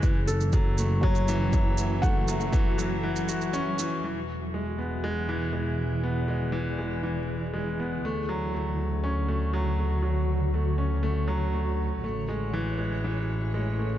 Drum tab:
SH |x-xxx-x--xx-x-x-|x-xxx-x--xxxx-x-|----------------|----------------|
BD |o---o---o---o---|o---o-----------|----------------|----------------|

SH |----------------|----------------|----------------|
BD |----------------|----------------|----------------|